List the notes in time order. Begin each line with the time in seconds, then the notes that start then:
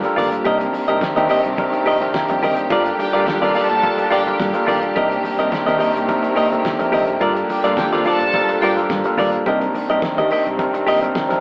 Already playing: F3 G3 A#3 D4 F4 G4 A4 A#4 C5
0.04 G3 D4 F4 A4 A#4, muted clean electric guitar stroke, closed hi-hat, muted conga
0.16 G1 F4 A#4 D5, open hi-hat, high conga, low conga
0.32 A#1, muted clean electric guitar stroke, closed hi-hat
0.45 C2 C3 D#3 C4 D4 D#4 G4 A#4 D#5, kick, closed hi-hat, muted conga
0.60 muted clean electric guitar stroke, closed hi-hat, muted conga
0.73 muted clean electric guitar stroke, open hi-hat, high conga
0.88 C2 C3 C4 D4 D#4 G4 A#4 D#5, closed hi-hat
1.01 muted clean electric guitar stroke, kick, snare, closed hi-hat, high conga
1.16 D#2 C3 C4 D4 D#4 G4 A#4 D#5, closed hi-hat, muted conga, low conga
1.29 G4 A#4 D#5 G5, open hi-hat, high conga
1.44 C2, muted clean electric guitar stroke, closed hi-hat
1.57 C3 C4 D4 D#4 A#4 D#5, muted clean electric guitar stroke, kick, closed hi-hat, muted conga, high conga
1.73 muted clean electric guitar stroke, closed hi-hat, muted conga
1.86 A#1 G4 A#4 D#5, open hi-hat
2.01 C3 C4 D4 D#4 A#4, muted clean electric guitar stroke, closed hi-hat, high conga
2.14 C5 F5 A#5, kick, snare, closed hi-hat, muted conga
2.28 F2 D5 G5, muted clean electric guitar stroke, closed hi-hat
2.43 G1 G4 A#4 D#5, open hi-hat, high conga, low conga
2.57 F1 G4 C5, muted clean electric guitar stroke, closed hi-hat
2.69 G1 F3 G3 A#3 D4 F4 A4 A#4 D5, kick, closed hi-hat
2.86 muted clean electric guitar stroke, closed hi-hat, muted conga
2.99 G4 G5, muted clean electric guitar stroke, open hi-hat, high conga
3.13 G1 G3 D4 F4 A4 A#4 D5 F5, closed hi-hat
3.26 G4 G5, muted clean electric guitar stroke, kick, snare, closed hi-hat, high conga
3.41 C2 G3 D4 F4 A4 A#4 D5 F5, closed hi-hat, muted conga, low conga
3.54 F4 A4 A#4 D5 A5, open hi-hat, high conga
3.70 A#1, muted clean electric guitar stroke, closed hi-hat
3.82 G3 D4 F4 A4 A#4, muted clean electric guitar stroke, kick, closed hi-hat, high conga
3.98 muted clean electric guitar stroke, closed hi-hat, muted conga
4.11 G1 F4 G4 A#4 D5 G5, open hi-hat
4.26 G3 D4 F4 A4 A#4, muted clean electric guitar stroke, closed hi-hat, high conga
4.40 G2, kick, snare, closed hi-hat
4.54 G3 D4 F4 A4 A#4, muted clean electric guitar stroke, closed hi-hat, muted conga
4.67 G1 F4 A#4 D5, open hi-hat, high conga, low conga
4.82 A#1, muted clean electric guitar stroke, closed hi-hat
4.95 C2 C3 D#3 C4 D4 D#4 G4 A#4 D#5, kick, closed hi-hat
5.11 muted clean electric guitar stroke, closed hi-hat
5.24 muted clean electric guitar stroke, open hi-hat, high conga
5.38 C2 C3 C4 D4 D#4 G4 A#4 D#5, closed hi-hat
5.52 muted clean electric guitar stroke, kick, snare, closed hi-hat, muted conga, high conga
5.66 D#2 C3 C4 D4 D#4 G4 A#4 D#5, closed hi-hat, low conga
5.79 G4 A#4 D#5, open hi-hat, high conga
5.95 C2, muted clean electric guitar stroke, closed hi-hat
6.08 C3 C4 D4 D#4 A#4, muted clean electric guitar stroke, kick, closed hi-hat, high conga
6.23 muted clean electric guitar stroke, closed hi-hat, muted conga
6.36 A#1 G4 A#4 D#5, open hi-hat
6.51 C3 C4 D4 D#4 A4, muted clean electric guitar stroke, closed hi-hat, high conga
6.65 kick, snare, closed hi-hat, muted conga
6.79 F2 C3 C4 D4 D#4 A#4, muted clean electric guitar stroke, closed hi-hat
6.92 G1 G4 A#4 D#5, open hi-hat, high conga, low conga
7.07 F1, muted clean electric guitar stroke, closed hi-hat
7.20 G1 F3 G3 D4 F4 A4 A#4 D5, kick, closed hi-hat, muted conga
7.36 muted clean electric guitar stroke, closed hi-hat, muted conga
7.49 G4 G5, muted clean electric guitar stroke, open hi-hat, high conga
7.64 G1 G3 D4 F4 A4 A#4 D5 F5, closed hi-hat
7.77 G4 G5, muted clean electric guitar stroke, kick, snare, closed hi-hat, muted conga, high conga
7.92 C2 G3 D4 F4 A4 A#4 C5 D5 F5, closed hi-hat, muted conga, low conga
8.05 F4 A4 A#4 D5 A5, open hi-hat, high conga
8.20 A#1, muted clean electric guitar stroke, closed hi-hat
8.33 G3 D4 F4 A4 A#4, muted clean electric guitar stroke, kick, closed hi-hat, muted conga, high conga
8.49 muted clean electric guitar stroke, closed hi-hat
8.61 G1 F4 G4 A#4 D5 G5, open hi-hat
8.76 G3 D4 F4 A4 A#4, muted clean electric guitar stroke, closed hi-hat, high conga
8.90 G2, kick, snare, closed hi-hat
9.04 G3 D4 F4 A4 A#4, muted clean electric guitar stroke, closed hi-hat
9.17 G1 F4 A#4 D5, open hi-hat, high conga, low conga
9.33 A#1, muted clean electric guitar stroke, closed hi-hat
9.45 C2 C3 D#3 G3 C4 D4 D#4 G4 A#4 D#5, kick, closed hi-hat, muted conga
9.61 muted clean electric guitar stroke, closed hi-hat, muted conga
9.74 muted clean electric guitar stroke, open hi-hat, high conga
9.89 C2 C3 C4 D4 D#4 G4 A#4 D#5, closed hi-hat
10.02 muted clean electric guitar stroke, kick, snare, closed hi-hat, high conga
10.17 D#2 C3 C4 D4 D#4 G4 A#4 D#5, closed hi-hat, muted conga, low conga
10.30 G4 A#4 D#5, open hi-hat, high conga
10.46 C2, muted clean electric guitar stroke, closed hi-hat
10.58 C3 C4 D4 D#4 A#4, muted clean electric guitar stroke, kick, closed hi-hat, muted conga, high conga
10.74 muted clean electric guitar stroke, closed hi-hat, muted conga
10.87 A#1 G4 A#4 D#5, open hi-hat
11.01 C3 C4 D4 D#4 A#4, muted clean electric guitar stroke, closed hi-hat, high conga
11.15 kick, snare, closed hi-hat
11.28 F2 C3 C4 D4 D#4 A#4, muted clean electric guitar stroke, snare, closed hi-hat, muted conga